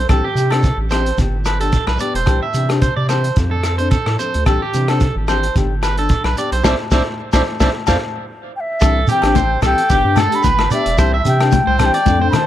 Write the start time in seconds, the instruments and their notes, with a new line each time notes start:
0.09 analog synth bass C2, steel-string acoustic guitar E3 C4 D4 G4, clean electric guitar A4, kick, cross-stick, closed hi-hat, low agogo, shekere
0.24 clean electric guitar G4
0.35 analog synth bass C3, steel-string acoustic guitar C4 D4 G4, closed hi-hat, shekere
0.50 steel-string acoustic guitar C4 D4 G4, clean electric guitar A4, cross-stick, closed hi-hat, low agogo
0.63 kick, closed hi-hat, shekere
0.77 analog synth bass A1
0.91 steel-string acoustic guitar E3 C4 D4 G4, clean electric guitar C5, cross-stick, closed hi-hat, low agogo, shekere
1.06 closed hi-hat
1.18 analog synth bass G1, steel-string acoustic guitar B3 D4 G4, kick, closed hi-hat, shekere
1.45 clean electric guitar B4, cross-stick, closed hi-hat, low agogo, shekere
1.60 steel-string acoustic guitar D4 G4, clean electric guitar A4, closed hi-hat
1.72 kick, closed hi-hat, shekere
1.87 analog synth bass B1, clean electric guitar B4, cross-stick, low agogo
1.99 steel-string acoustic guitar B3 D4 G4, clean electric guitar D5, closed hi-hat, shekere
2.15 analog synth bass E1, clean electric guitar C5, closed hi-hat
2.26 analog synth bass C2, steel-string acoustic guitar E3 D4 G4, muted steel-string acoustic guitar stroke, kick, cross-stick, closed hi-hat, low agogo, shekere
2.43 clean electric guitar E5
2.54 analog synth bass C3, steel-string acoustic guitar E3 C4 D4 G4, closed hi-hat, shekere
2.69 steel-string acoustic guitar C4 D4 G4, cross-stick, closed hi-hat, low agogo
2.82 clean electric guitar C5, kick, closed hi-hat, shekere
2.97 analog synth bass C3, clean electric guitar D5
3.09 steel-string acoustic guitar E3 C4 D4 G4, clean electric guitar C5, cross-stick, closed hi-hat, low agogo, shekere
3.24 closed hi-hat
3.36 analog synth bass F2, steel-string acoustic guitar F3 C4 D4 A4, kick, closed hi-hat, shekere
3.51 clean electric guitar A4
3.63 cross-stick, closed hi-hat, low agogo, shekere
3.78 steel-string acoustic guitar C4 D4 A4, clean electric guitar C5, closed hi-hat
3.91 clean electric guitar A4, kick, closed hi-hat, shekere
4.06 analog synth bass A2, cross-stick, low agogo
4.18 steel-string acoustic guitar F3 C4 D4 A4, clean electric guitar C5, closed hi-hat, shekere
4.34 analog synth bass D2, closed hi-hat
4.46 analog synth bass C2, steel-string acoustic guitar E3 C4 D4 G4, clean electric guitar A4, kick, cross-stick, closed hi-hat, low agogo, shekere
4.62 clean electric guitar G4
4.73 analog synth bass C3, steel-string acoustic guitar E3 C4 D4 G4, closed hi-hat, shekere
4.88 steel-string acoustic guitar C4 D4 G4, clean electric guitar A4, cross-stick, closed hi-hat, low agogo
5.00 kick, closed hi-hat, shekere
5.16 analog synth bass G#1
5.28 steel-string acoustic guitar E3 C4 D4 G4, clean electric guitar C5, cross-stick, closed hi-hat, low agogo, shekere
5.43 closed hi-hat
5.55 analog synth bass G1, steel-string acoustic guitar B3 D4 G4, kick, closed hi-hat, shekere
5.83 clean electric guitar B4, cross-stick, closed hi-hat, low agogo, shekere
5.97 steel-string acoustic guitar D4, clean electric guitar A4, muted steel-string acoustic guitar stroke, closed hi-hat
6.09 kick, closed hi-hat, shekere
6.24 analog synth bass B1, clean electric guitar B4, cross-stick, low agogo
6.36 steel-string acoustic guitar B3 D4 G4, clean electric guitar D5, closed hi-hat, shekere
6.52 analog synth bass B1, clean electric guitar C5, closed hi-hat
6.64 analog synth bass C2, steel-string acoustic guitar C4 D4 E4, clean electric guitar C5 D5 E5, kick, snare, low agogo, shekere
6.91 analog synth bass C2, steel-string acoustic guitar C4 D4 E4, clean electric guitar C5 D5 E5, kick, snare, low agogo, shekere
7.33 analog synth bass C2, steel-string acoustic guitar C4 D4 E4, clean electric guitar C5 D5 E5, kick, snare, low agogo, shekere
7.60 analog synth bass C2, steel-string acoustic guitar C4 D4 E4, clean electric guitar C5 D5 E5, kick, snare, low agogo, shekere
7.87 analog synth bass F2, steel-string acoustic guitar C4 D4 F4, clean electric guitar C5 D5 F5, kick, snare, low agogo, shekere
8.56 flute G5
8.60 flute E5
8.81 analog synth bass C2, steel-string acoustic guitar E3 C4 D4 G4, clean electric guitar A4, kick, cross-stick, closed hi-hat, muted conga, low agogo, shekere
9.08 steel-string acoustic guitar E3 C4 D4 G4, clean electric guitar G4, flute G5, closed hi-hat, muted conga, shekere
9.22 analog synth bass A1, steel-string acoustic guitar C4 D4 G4, cross-stick, closed hi-hat, low agogo, shekere
9.35 clean electric guitar C5, kick, closed hi-hat, high conga, shekere
9.62 analog synth bass C2, steel-string acoustic guitar E3 C4 D4 G4, clean electric guitar A4, cross-stick, closed hi-hat, low agogo, shekere
9.66 flute G5
9.78 closed hi-hat
9.89 analog synth bass G1, steel-string acoustic guitar B3 D4 G4, clean electric guitar G4, kick, closed hi-hat, muted conga, shekere
10.04 analog synth bass G2, steel-string acoustic guitar D4 G4
10.16 clean electric guitar A4, cross-stick, closed hi-hat, high conga, low agogo, shekere
10.21 flute A5
10.31 steel-string acoustic guitar D4 G4, closed hi-hat
10.35 flute B5
10.43 analog synth bass G1, clean electric guitar B4, kick, closed hi-hat, high conga, shekere
10.59 cross-stick, low agogo
10.70 steel-string acoustic guitar B3 D4 G4, clean electric guitar D5, flute E5, closed hi-hat, muted conga, shekere
10.86 analog synth bass E1, closed hi-hat
10.97 analog synth bass C2, steel-string acoustic guitar E3 C4 D4 G4, clean electric guitar C5, kick, cross-stick, closed hi-hat, muted conga, low agogo, shekere
11.14 clean electric guitar E5
11.23 analog synth bass C3, steel-string acoustic guitar E3 C4 D4 G4, closed hi-hat, muted conga, shekere
11.28 flute G5
11.40 steel-string acoustic guitar C4 D4 G4, cross-stick, closed hi-hat, low agogo, shekere
11.52 kick, closed hi-hat, high conga, shekere
11.67 analog synth bass C2, clean electric guitar C5
11.79 steel-string acoustic guitar E3 C4 D4 G4, flute A5, cross-stick, closed hi-hat, low agogo, shekere
11.86 flute G5
11.94 clean electric guitar D5, closed hi-hat
12.06 analog synth bass F2, steel-string acoustic guitar F3 C4 D4 A4, kick, closed hi-hat, muted conga, high conga, shekere
12.21 steel-string acoustic guitar C4 D4 A4, clean electric guitar C5
12.31 flute B5, cross-stick, closed hi-hat, low conga, low agogo, shekere
12.36 flute A5